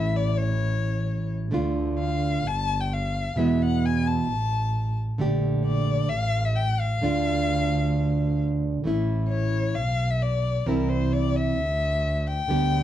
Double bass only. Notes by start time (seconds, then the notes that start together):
Already playing: A1
1.52 D2
2.45 G1
3.36 E2
4.29 A1
5.19 A#1
6.10 A1
7.02 D2
8.83 A1
9.76 B1
10.66 C2
11.57 D2
12.48 D2